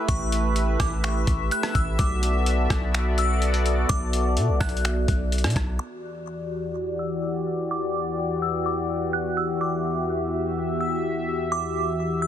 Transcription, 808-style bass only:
0, 0, Header, 1, 2, 480
1, 0, Start_track
1, 0, Key_signature, 1, "minor"
1, 0, Tempo, 476190
1, 86, Time_signature, 4, 2, 24, 8
1, 12369, End_track
2, 0, Start_track
2, 0, Title_t, "808-style bass"
2, 0, Program_c, 0, 38
2, 86, Note_on_c, 0, 33, 106
2, 777, Note_off_c, 0, 33, 0
2, 804, Note_on_c, 0, 33, 104
2, 1266, Note_off_c, 0, 33, 0
2, 1284, Note_on_c, 0, 33, 102
2, 1515, Note_off_c, 0, 33, 0
2, 1763, Note_on_c, 0, 33, 108
2, 1995, Note_off_c, 0, 33, 0
2, 2007, Note_on_c, 0, 35, 109
2, 2698, Note_off_c, 0, 35, 0
2, 2724, Note_on_c, 0, 35, 105
2, 3885, Note_off_c, 0, 35, 0
2, 3926, Note_on_c, 0, 35, 107
2, 4406, Note_on_c, 0, 47, 98
2, 4421, Note_off_c, 0, 35, 0
2, 4526, Note_on_c, 0, 35, 103
2, 4541, Note_off_c, 0, 47, 0
2, 4637, Note_off_c, 0, 35, 0
2, 4643, Note_on_c, 0, 35, 109
2, 5105, Note_off_c, 0, 35, 0
2, 5124, Note_on_c, 0, 35, 105
2, 5485, Note_on_c, 0, 47, 100
2, 5500, Note_off_c, 0, 35, 0
2, 5597, Note_off_c, 0, 47, 0
2, 5603, Note_on_c, 0, 35, 104
2, 5835, Note_off_c, 0, 35, 0
2, 12369, End_track
0, 0, End_of_file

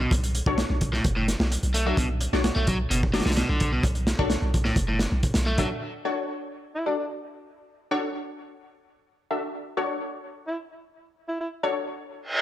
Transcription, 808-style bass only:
0, 0, Header, 1, 2, 480
1, 0, Start_track
1, 0, Key_signature, 2, "minor"
1, 0, Tempo, 465116
1, 122, Time_signature, 4, 2, 24, 8
1, 12812, End_track
2, 0, Start_track
2, 0, Title_t, "808-style bass"
2, 0, Program_c, 0, 38
2, 117, Note_on_c, 0, 35, 101
2, 437, Note_off_c, 0, 35, 0
2, 477, Note_on_c, 0, 35, 78
2, 665, Note_off_c, 0, 35, 0
2, 723, Note_on_c, 0, 35, 86
2, 1039, Note_off_c, 0, 35, 0
2, 1082, Note_on_c, 0, 30, 104
2, 1399, Note_off_c, 0, 30, 0
2, 1443, Note_on_c, 0, 35, 93
2, 1628, Note_off_c, 0, 35, 0
2, 1685, Note_on_c, 0, 35, 93
2, 1999, Note_off_c, 0, 35, 0
2, 2037, Note_on_c, 0, 35, 104
2, 2357, Note_off_c, 0, 35, 0
2, 2406, Note_on_c, 0, 35, 78
2, 2589, Note_off_c, 0, 35, 0
2, 2644, Note_on_c, 0, 35, 89
2, 2959, Note_off_c, 0, 35, 0
2, 3003, Note_on_c, 0, 30, 104
2, 3320, Note_off_c, 0, 30, 0
2, 3363, Note_on_c, 0, 35, 93
2, 3548, Note_off_c, 0, 35, 0
2, 3606, Note_on_c, 0, 35, 91
2, 3920, Note_off_c, 0, 35, 0
2, 3958, Note_on_c, 0, 35, 104
2, 4277, Note_off_c, 0, 35, 0
2, 4324, Note_on_c, 0, 35, 78
2, 4509, Note_off_c, 0, 35, 0
2, 4564, Note_on_c, 0, 35, 88
2, 4879, Note_off_c, 0, 35, 0
2, 4913, Note_on_c, 0, 30, 107
2, 5235, Note_off_c, 0, 30, 0
2, 5285, Note_on_c, 0, 35, 93
2, 5469, Note_off_c, 0, 35, 0
2, 5526, Note_on_c, 0, 35, 91
2, 5840, Note_off_c, 0, 35, 0
2, 12812, End_track
0, 0, End_of_file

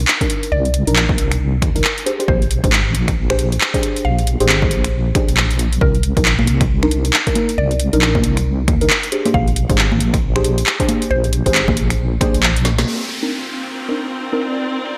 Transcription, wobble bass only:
0, 0, Header, 1, 2, 480
1, 0, Start_track
1, 0, Key_signature, -3, "minor"
1, 0, Tempo, 441176
1, 564, Time_signature, 4, 2, 24, 8
1, 16295, End_track
2, 0, Start_track
2, 0, Title_t, "Wobble bass"
2, 0, Program_c, 0, 39
2, 564, Note_on_c, 0, 36, 105
2, 908, Note_off_c, 0, 36, 0
2, 949, Note_on_c, 0, 34, 108
2, 1284, Note_on_c, 0, 36, 88
2, 1300, Note_off_c, 0, 34, 0
2, 1763, Note_on_c, 0, 39, 104
2, 1779, Note_off_c, 0, 36, 0
2, 1883, Note_off_c, 0, 39, 0
2, 1908, Note_on_c, 0, 36, 91
2, 1987, Note_off_c, 0, 36, 0
2, 2483, Note_on_c, 0, 34, 102
2, 2828, Note_off_c, 0, 34, 0
2, 2868, Note_on_c, 0, 32, 104
2, 3205, Note_on_c, 0, 34, 89
2, 3221, Note_off_c, 0, 32, 0
2, 3898, Note_off_c, 0, 34, 0
2, 4406, Note_on_c, 0, 34, 102
2, 4749, Note_off_c, 0, 34, 0
2, 4791, Note_on_c, 0, 32, 108
2, 5124, Note_on_c, 0, 34, 88
2, 5140, Note_off_c, 0, 32, 0
2, 5577, Note_off_c, 0, 34, 0
2, 5751, Note_on_c, 0, 34, 112
2, 6298, Note_off_c, 0, 34, 0
2, 6324, Note_on_c, 0, 36, 103
2, 6668, Note_off_c, 0, 36, 0
2, 6709, Note_on_c, 0, 34, 111
2, 7046, Note_on_c, 0, 36, 89
2, 7062, Note_off_c, 0, 34, 0
2, 7738, Note_off_c, 0, 36, 0
2, 8246, Note_on_c, 0, 36, 98
2, 8589, Note_off_c, 0, 36, 0
2, 8631, Note_on_c, 0, 34, 108
2, 8966, Note_on_c, 0, 36, 89
2, 8982, Note_off_c, 0, 34, 0
2, 9443, Note_on_c, 0, 39, 106
2, 9459, Note_off_c, 0, 36, 0
2, 9563, Note_off_c, 0, 39, 0
2, 9590, Note_on_c, 0, 36, 90
2, 9667, Note_off_c, 0, 36, 0
2, 10163, Note_on_c, 0, 34, 102
2, 10508, Note_off_c, 0, 34, 0
2, 10548, Note_on_c, 0, 32, 108
2, 10882, Note_on_c, 0, 34, 90
2, 10899, Note_off_c, 0, 32, 0
2, 11576, Note_off_c, 0, 34, 0
2, 12083, Note_on_c, 0, 34, 108
2, 12428, Note_off_c, 0, 34, 0
2, 12468, Note_on_c, 0, 32, 112
2, 12803, Note_on_c, 0, 34, 86
2, 12819, Note_off_c, 0, 32, 0
2, 13257, Note_off_c, 0, 34, 0
2, 13428, Note_on_c, 0, 34, 106
2, 13977, Note_off_c, 0, 34, 0
2, 16295, End_track
0, 0, End_of_file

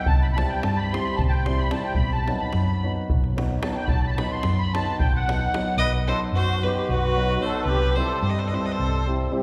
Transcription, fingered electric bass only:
0, 0, Header, 1, 2, 480
1, 0, Start_track
1, 0, Tempo, 542495
1, 70, Time_signature, 7, 3, 24, 8
1, 8343, End_track
2, 0, Start_track
2, 0, Title_t, "Fingered electric bass"
2, 0, Program_c, 0, 33
2, 66, Note_on_c, 0, 36, 97
2, 365, Note_off_c, 0, 36, 0
2, 568, Note_on_c, 0, 43, 75
2, 864, Note_off_c, 0, 43, 0
2, 1059, Note_on_c, 0, 36, 90
2, 1475, Note_off_c, 0, 36, 0
2, 1749, Note_on_c, 0, 35, 86
2, 2048, Note_off_c, 0, 35, 0
2, 2245, Note_on_c, 0, 42, 86
2, 2543, Note_off_c, 0, 42, 0
2, 2745, Note_on_c, 0, 35, 86
2, 3159, Note_off_c, 0, 35, 0
2, 3427, Note_on_c, 0, 35, 87
2, 3726, Note_off_c, 0, 35, 0
2, 3931, Note_on_c, 0, 42, 88
2, 4227, Note_off_c, 0, 42, 0
2, 4416, Note_on_c, 0, 35, 77
2, 4832, Note_off_c, 0, 35, 0
2, 5107, Note_on_c, 0, 35, 98
2, 5405, Note_off_c, 0, 35, 0
2, 5595, Note_on_c, 0, 42, 87
2, 5895, Note_off_c, 0, 42, 0
2, 6097, Note_on_c, 0, 35, 100
2, 6512, Note_off_c, 0, 35, 0
2, 6773, Note_on_c, 0, 36, 104
2, 7074, Note_off_c, 0, 36, 0
2, 7276, Note_on_c, 0, 43, 98
2, 7575, Note_off_c, 0, 43, 0
2, 7782, Note_on_c, 0, 36, 80
2, 8195, Note_off_c, 0, 36, 0
2, 8343, End_track
0, 0, End_of_file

